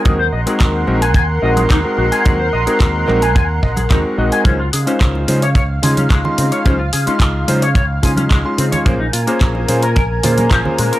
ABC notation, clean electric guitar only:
X:1
M:4/4
L:1/16
Q:1/4=109
K:Abmix
V:1 name="Clean electric guitar"
A c e A z3 a a z e A E z G a | A c e A z3 a a z e A E z G a | D F A D z3 d d z A D A, z C d | D F A D z3 d d z A D A, z C d |
B, E F B, z3 B B z F B, F, z A, B |]